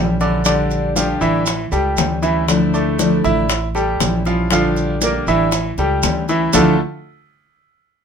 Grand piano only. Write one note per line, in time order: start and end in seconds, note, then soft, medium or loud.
0.00 0.12 G3 medium
0.00 0.12 G4 medium
0.00 0.12 A4 medium
0.21 0.41 D3 medium
0.21 0.41 D4 medium
0.21 0.42 D5 medium
0.46 0.87 D3 medium
0.46 0.87 D4 medium
0.46 0.87 D5 medium
0.96 1.17 F3 medium
0.96 1.17 F4 medium
0.96 1.17 G4 medium
1.21 1.63 E3 medium
1.21 1.63 E4 medium
1.21 1.63 E5 medium
1.72 2.14 G3 medium
1.72 2.14 G4 medium
1.72 2.14 A4 medium
2.22 2.44 E3 medium
2.22 2.44 E4 medium
2.22 2.44 E5 medium
2.74 3.15 A3 medium
2.74 3.16 A4 medium
2.74 3.16 D5 medium
3.24 3.66 E4 medium
3.24 3.66 E5 medium
3.75 4.17 G3 medium
3.75 4.17 G4 medium
3.75 4.17 A4 medium
4.26 4.47 F3 medium
4.26 4.47 F4 medium
4.26 4.47 F5 medium
4.52 4.93 F3 medium
4.52 4.93 F4 medium
4.52 4.93 F5 medium
5.03 5.23 A#3 medium
5.03 5.24 A#4 medium
5.03 5.24 D5 medium
5.28 5.69 E3 medium
5.28 5.70 E4 medium
5.28 5.70 E5 medium
5.79 6.20 G3 medium
5.79 6.20 G4 medium
5.79 6.20 A4 medium
6.29 6.50 E3 medium
6.29 6.50 E4 medium
6.29 6.50 E5 medium
6.54 6.78 D3 medium
6.54 6.78 A3 medium
6.54 6.78 D4 medium
6.54 6.78 E4 medium
6.54 6.78 F4 medium
6.54 6.78 A4 loud